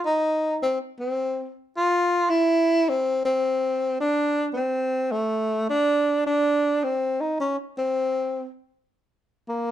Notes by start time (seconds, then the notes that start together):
0.06 D#4
0.63 C4
1.00 C4
1.77 F4
2.30 E4
2.89 C4
3.25 C4
4.00 D4
4.53 B3 C4
5.12 A3
5.70 D4
6.26 D4
6.84 C4
7.21 D#4
7.41 C#4
7.78 C4
9.49 A#3